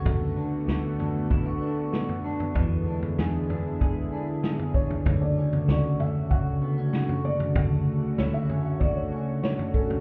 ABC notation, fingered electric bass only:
X:1
M:4/4
L:1/8
Q:1/4=96
K:Dlyd
V:1 name="Fingered electric bass" clef=bass
D,,2 D,,6 | E,,2 E,,6 | D,,2 D,,6 | D,,2 D,,6 |]